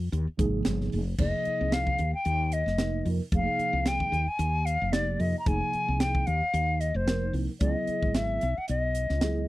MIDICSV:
0, 0, Header, 1, 6, 480
1, 0, Start_track
1, 0, Tempo, 535714
1, 1065, Time_signature, 4, 2, 24, 8
1, 8495, End_track
2, 0, Start_track
2, 0, Title_t, "Flute"
2, 0, Program_c, 0, 73
2, 1072, Note_on_c, 0, 75, 83
2, 1552, Note_on_c, 0, 77, 85
2, 1565, Note_off_c, 0, 75, 0
2, 1920, Note_off_c, 0, 77, 0
2, 1923, Note_on_c, 0, 79, 90
2, 2268, Note_on_c, 0, 75, 81
2, 2281, Note_off_c, 0, 79, 0
2, 2746, Note_off_c, 0, 75, 0
2, 3005, Note_on_c, 0, 77, 96
2, 3472, Note_on_c, 0, 79, 95
2, 3485, Note_off_c, 0, 77, 0
2, 3836, Note_on_c, 0, 80, 94
2, 3849, Note_off_c, 0, 79, 0
2, 4171, Note_on_c, 0, 77, 91
2, 4184, Note_off_c, 0, 80, 0
2, 4414, Note_on_c, 0, 74, 80
2, 4427, Note_off_c, 0, 77, 0
2, 4662, Note_on_c, 0, 75, 81
2, 4676, Note_off_c, 0, 74, 0
2, 4826, Note_off_c, 0, 75, 0
2, 4831, Note_on_c, 0, 82, 67
2, 4908, Note_on_c, 0, 80, 98
2, 4921, Note_off_c, 0, 82, 0
2, 5381, Note_on_c, 0, 79, 86
2, 5394, Note_off_c, 0, 80, 0
2, 5614, Note_on_c, 0, 77, 87
2, 5628, Note_off_c, 0, 79, 0
2, 6097, Note_on_c, 0, 75, 74
2, 6111, Note_off_c, 0, 77, 0
2, 6237, Note_on_c, 0, 72, 71
2, 6250, Note_off_c, 0, 75, 0
2, 6585, Note_off_c, 0, 72, 0
2, 6812, Note_on_c, 0, 75, 76
2, 7305, Note_on_c, 0, 76, 85
2, 7318, Note_off_c, 0, 75, 0
2, 7684, Note_on_c, 0, 78, 77
2, 7698, Note_off_c, 0, 76, 0
2, 7784, Note_off_c, 0, 78, 0
2, 7789, Note_on_c, 0, 75, 82
2, 8471, Note_off_c, 0, 75, 0
2, 8495, End_track
3, 0, Start_track
3, 0, Title_t, "Tine electric piano"
3, 0, Program_c, 1, 4
3, 337, Note_on_c, 1, 48, 70
3, 339, Note_on_c, 1, 53, 70
3, 348, Note_on_c, 1, 58, 66
3, 349, Note_on_c, 1, 63, 68
3, 352, Note_on_c, 1, 68, 84
3, 886, Note_off_c, 1, 48, 0
3, 887, Note_off_c, 1, 53, 0
3, 891, Note_off_c, 1, 58, 0
3, 892, Note_off_c, 1, 63, 0
3, 893, Note_off_c, 1, 68, 0
3, 1066, Note_on_c, 1, 48, 63
3, 1070, Note_on_c, 1, 53, 56
3, 1070, Note_on_c, 1, 58, 50
3, 1075, Note_on_c, 1, 63, 58
3, 1082, Note_on_c, 1, 68, 65
3, 1784, Note_off_c, 1, 48, 0
3, 1786, Note_off_c, 1, 53, 0
3, 1786, Note_off_c, 1, 58, 0
3, 1788, Note_off_c, 1, 63, 0
3, 1792, Note_off_c, 1, 68, 0
3, 2485, Note_on_c, 1, 48, 57
3, 2488, Note_on_c, 1, 53, 56
3, 2493, Note_on_c, 1, 63, 62
3, 2494, Note_on_c, 1, 58, 54
3, 2500, Note_on_c, 1, 70, 72
3, 2866, Note_off_c, 1, 48, 0
3, 2867, Note_off_c, 1, 53, 0
3, 2870, Note_off_c, 1, 58, 0
3, 2870, Note_off_c, 1, 63, 0
3, 2873, Note_off_c, 1, 70, 0
3, 2974, Note_on_c, 1, 48, 62
3, 2977, Note_on_c, 1, 58, 58
3, 2980, Note_on_c, 1, 53, 59
3, 2988, Note_on_c, 1, 63, 55
3, 2993, Note_on_c, 1, 68, 68
3, 3698, Note_off_c, 1, 48, 0
3, 3700, Note_off_c, 1, 58, 0
3, 3701, Note_off_c, 1, 53, 0
3, 3705, Note_off_c, 1, 63, 0
3, 3708, Note_off_c, 1, 68, 0
3, 4398, Note_on_c, 1, 48, 63
3, 4400, Note_on_c, 1, 53, 57
3, 4402, Note_on_c, 1, 58, 61
3, 4410, Note_on_c, 1, 63, 62
3, 4411, Note_on_c, 1, 67, 67
3, 4782, Note_off_c, 1, 48, 0
3, 4783, Note_off_c, 1, 53, 0
3, 4785, Note_off_c, 1, 58, 0
3, 4789, Note_off_c, 1, 63, 0
3, 4789, Note_off_c, 1, 67, 0
3, 4887, Note_on_c, 1, 48, 59
3, 4893, Note_on_c, 1, 53, 55
3, 4894, Note_on_c, 1, 63, 57
3, 4895, Note_on_c, 1, 58, 58
3, 4899, Note_on_c, 1, 68, 66
3, 5615, Note_off_c, 1, 48, 0
3, 5618, Note_off_c, 1, 53, 0
3, 5619, Note_off_c, 1, 58, 0
3, 5619, Note_off_c, 1, 63, 0
3, 5621, Note_off_c, 1, 68, 0
3, 6324, Note_on_c, 1, 48, 68
3, 6329, Note_on_c, 1, 53, 58
3, 6332, Note_on_c, 1, 58, 54
3, 6334, Note_on_c, 1, 63, 56
3, 6341, Note_on_c, 1, 70, 68
3, 6706, Note_off_c, 1, 48, 0
3, 6708, Note_off_c, 1, 53, 0
3, 6710, Note_off_c, 1, 58, 0
3, 6711, Note_off_c, 1, 63, 0
3, 6714, Note_off_c, 1, 70, 0
3, 6813, Note_on_c, 1, 49, 60
3, 6820, Note_on_c, 1, 54, 59
3, 6821, Note_on_c, 1, 59, 60
3, 6827, Note_on_c, 1, 64, 57
3, 6829, Note_on_c, 1, 68, 71
3, 7538, Note_off_c, 1, 49, 0
3, 7542, Note_off_c, 1, 54, 0
3, 7542, Note_off_c, 1, 59, 0
3, 7545, Note_off_c, 1, 64, 0
3, 7546, Note_off_c, 1, 68, 0
3, 8250, Note_on_c, 1, 49, 63
3, 8252, Note_on_c, 1, 54, 55
3, 8258, Note_on_c, 1, 59, 55
3, 8261, Note_on_c, 1, 68, 72
3, 8263, Note_on_c, 1, 64, 56
3, 8495, Note_off_c, 1, 49, 0
3, 8495, Note_off_c, 1, 54, 0
3, 8495, Note_off_c, 1, 59, 0
3, 8495, Note_off_c, 1, 64, 0
3, 8495, Note_off_c, 1, 68, 0
3, 8495, End_track
4, 0, Start_track
4, 0, Title_t, "Fretless electric bass"
4, 0, Program_c, 2, 35
4, 110, Note_on_c, 2, 39, 89
4, 224, Note_off_c, 2, 39, 0
4, 347, Note_on_c, 2, 32, 76
4, 563, Note_off_c, 2, 32, 0
4, 593, Note_on_c, 2, 31, 81
4, 805, Note_off_c, 2, 31, 0
4, 835, Note_on_c, 2, 29, 73
4, 1047, Note_off_c, 2, 29, 0
4, 1062, Note_on_c, 2, 29, 93
4, 1179, Note_off_c, 2, 29, 0
4, 1439, Note_on_c, 2, 36, 67
4, 1744, Note_off_c, 2, 36, 0
4, 1783, Note_on_c, 2, 39, 75
4, 1899, Note_off_c, 2, 39, 0
4, 2020, Note_on_c, 2, 39, 77
4, 2349, Note_off_c, 2, 39, 0
4, 2383, Note_on_c, 2, 29, 64
4, 2695, Note_off_c, 2, 29, 0
4, 2736, Note_on_c, 2, 41, 70
4, 2856, Note_off_c, 2, 41, 0
4, 2974, Note_on_c, 2, 29, 92
4, 3095, Note_off_c, 2, 29, 0
4, 3342, Note_on_c, 2, 36, 69
4, 3655, Note_off_c, 2, 36, 0
4, 3692, Note_on_c, 2, 39, 73
4, 3813, Note_off_c, 2, 39, 0
4, 3932, Note_on_c, 2, 39, 86
4, 4265, Note_off_c, 2, 39, 0
4, 4313, Note_on_c, 2, 29, 72
4, 4621, Note_off_c, 2, 29, 0
4, 4655, Note_on_c, 2, 41, 72
4, 4775, Note_off_c, 2, 41, 0
4, 4898, Note_on_c, 2, 29, 89
4, 5017, Note_off_c, 2, 29, 0
4, 5271, Note_on_c, 2, 36, 70
4, 5580, Note_off_c, 2, 36, 0
4, 5620, Note_on_c, 2, 39, 70
4, 5738, Note_off_c, 2, 39, 0
4, 5855, Note_on_c, 2, 39, 81
4, 6187, Note_off_c, 2, 39, 0
4, 6222, Note_on_c, 2, 29, 75
4, 6535, Note_off_c, 2, 29, 0
4, 6571, Note_on_c, 2, 36, 72
4, 6693, Note_off_c, 2, 36, 0
4, 6816, Note_on_c, 2, 37, 96
4, 6936, Note_off_c, 2, 37, 0
4, 7189, Note_on_c, 2, 32, 67
4, 7499, Note_off_c, 2, 32, 0
4, 7549, Note_on_c, 2, 35, 71
4, 7663, Note_off_c, 2, 35, 0
4, 7787, Note_on_c, 2, 35, 78
4, 8113, Note_off_c, 2, 35, 0
4, 8152, Note_on_c, 2, 37, 65
4, 8460, Note_off_c, 2, 37, 0
4, 8495, End_track
5, 0, Start_track
5, 0, Title_t, "Muted fretless electric bass strokes"
5, 244, Note_on_c, 9, 29, 37
5, 334, Note_off_c, 9, 29, 0
5, 1314, Note_on_c, 9, 29, 33
5, 1404, Note_off_c, 9, 29, 0
5, 1911, Note_on_c, 9, 29, 31
5, 2001, Note_off_c, 9, 29, 0
5, 3212, Note_on_c, 9, 29, 35
5, 3302, Note_off_c, 9, 29, 0
5, 3829, Note_on_c, 9, 29, 34
5, 3919, Note_off_c, 9, 29, 0
5, 5143, Note_on_c, 9, 29, 36
5, 5233, Note_off_c, 9, 29, 0
5, 5754, Note_on_c, 9, 29, 30
5, 5843, Note_off_c, 9, 29, 0
5, 7058, Note_on_c, 9, 29, 34
5, 7148, Note_off_c, 9, 29, 0
5, 7684, Note_on_c, 9, 29, 32
5, 7774, Note_off_c, 9, 29, 0
5, 8495, End_track
6, 0, Start_track
6, 0, Title_t, "Drums"
6, 117, Note_on_c, 9, 42, 77
6, 207, Note_off_c, 9, 42, 0
6, 349, Note_on_c, 9, 42, 67
6, 350, Note_on_c, 9, 36, 83
6, 439, Note_off_c, 9, 36, 0
6, 439, Note_off_c, 9, 42, 0
6, 581, Note_on_c, 9, 42, 75
6, 582, Note_on_c, 9, 38, 105
6, 671, Note_off_c, 9, 38, 0
6, 671, Note_off_c, 9, 42, 0
6, 724, Note_on_c, 9, 38, 37
6, 814, Note_off_c, 9, 38, 0
6, 827, Note_on_c, 9, 46, 71
6, 916, Note_off_c, 9, 46, 0
6, 1061, Note_on_c, 9, 49, 79
6, 1062, Note_on_c, 9, 36, 89
6, 1151, Note_off_c, 9, 49, 0
6, 1152, Note_off_c, 9, 36, 0
6, 1302, Note_on_c, 9, 42, 51
6, 1392, Note_off_c, 9, 42, 0
6, 1543, Note_on_c, 9, 42, 74
6, 1544, Note_on_c, 9, 38, 102
6, 1632, Note_off_c, 9, 42, 0
6, 1633, Note_off_c, 9, 38, 0
6, 1673, Note_on_c, 9, 36, 62
6, 1762, Note_off_c, 9, 36, 0
6, 1778, Note_on_c, 9, 42, 53
6, 1868, Note_off_c, 9, 42, 0
6, 2015, Note_on_c, 9, 42, 64
6, 2105, Note_off_c, 9, 42, 0
6, 2256, Note_on_c, 9, 42, 58
6, 2345, Note_off_c, 9, 42, 0
6, 2393, Note_on_c, 9, 38, 30
6, 2483, Note_off_c, 9, 38, 0
6, 2494, Note_on_c, 9, 42, 66
6, 2495, Note_on_c, 9, 38, 88
6, 2583, Note_off_c, 9, 42, 0
6, 2584, Note_off_c, 9, 38, 0
6, 2738, Note_on_c, 9, 46, 61
6, 2827, Note_off_c, 9, 46, 0
6, 2975, Note_on_c, 9, 36, 92
6, 2976, Note_on_c, 9, 42, 71
6, 3065, Note_off_c, 9, 36, 0
6, 3065, Note_off_c, 9, 42, 0
6, 3220, Note_on_c, 9, 42, 53
6, 3310, Note_off_c, 9, 42, 0
6, 3455, Note_on_c, 9, 38, 96
6, 3455, Note_on_c, 9, 42, 71
6, 3544, Note_off_c, 9, 42, 0
6, 3545, Note_off_c, 9, 38, 0
6, 3586, Note_on_c, 9, 36, 68
6, 3676, Note_off_c, 9, 36, 0
6, 3703, Note_on_c, 9, 42, 56
6, 3793, Note_off_c, 9, 42, 0
6, 3934, Note_on_c, 9, 42, 75
6, 4023, Note_off_c, 9, 42, 0
6, 4180, Note_on_c, 9, 42, 57
6, 4270, Note_off_c, 9, 42, 0
6, 4417, Note_on_c, 9, 42, 72
6, 4418, Note_on_c, 9, 38, 96
6, 4507, Note_off_c, 9, 38, 0
6, 4507, Note_off_c, 9, 42, 0
6, 4657, Note_on_c, 9, 46, 60
6, 4746, Note_off_c, 9, 46, 0
6, 4895, Note_on_c, 9, 36, 101
6, 4897, Note_on_c, 9, 42, 70
6, 4985, Note_off_c, 9, 36, 0
6, 4987, Note_off_c, 9, 42, 0
6, 5137, Note_on_c, 9, 42, 51
6, 5226, Note_off_c, 9, 42, 0
6, 5377, Note_on_c, 9, 42, 74
6, 5378, Note_on_c, 9, 38, 109
6, 5466, Note_off_c, 9, 42, 0
6, 5467, Note_off_c, 9, 38, 0
6, 5508, Note_on_c, 9, 36, 71
6, 5597, Note_off_c, 9, 36, 0
6, 5616, Note_on_c, 9, 42, 51
6, 5706, Note_off_c, 9, 42, 0
6, 5858, Note_on_c, 9, 42, 66
6, 5947, Note_off_c, 9, 42, 0
6, 6099, Note_on_c, 9, 42, 55
6, 6188, Note_off_c, 9, 42, 0
6, 6340, Note_on_c, 9, 38, 102
6, 6340, Note_on_c, 9, 42, 69
6, 6429, Note_off_c, 9, 42, 0
6, 6430, Note_off_c, 9, 38, 0
6, 6576, Note_on_c, 9, 46, 62
6, 6666, Note_off_c, 9, 46, 0
6, 6812, Note_on_c, 9, 42, 66
6, 6818, Note_on_c, 9, 36, 98
6, 6902, Note_off_c, 9, 42, 0
6, 6908, Note_off_c, 9, 36, 0
6, 7055, Note_on_c, 9, 42, 52
6, 7144, Note_off_c, 9, 42, 0
6, 7190, Note_on_c, 9, 36, 64
6, 7280, Note_off_c, 9, 36, 0
6, 7297, Note_on_c, 9, 42, 79
6, 7298, Note_on_c, 9, 38, 93
6, 7387, Note_off_c, 9, 42, 0
6, 7388, Note_off_c, 9, 38, 0
6, 7537, Note_on_c, 9, 42, 59
6, 7627, Note_off_c, 9, 42, 0
6, 7775, Note_on_c, 9, 42, 73
6, 7865, Note_off_c, 9, 42, 0
6, 8016, Note_on_c, 9, 42, 57
6, 8105, Note_off_c, 9, 42, 0
6, 8149, Note_on_c, 9, 38, 30
6, 8238, Note_off_c, 9, 38, 0
6, 8254, Note_on_c, 9, 42, 75
6, 8255, Note_on_c, 9, 38, 100
6, 8344, Note_off_c, 9, 38, 0
6, 8344, Note_off_c, 9, 42, 0
6, 8495, End_track
0, 0, End_of_file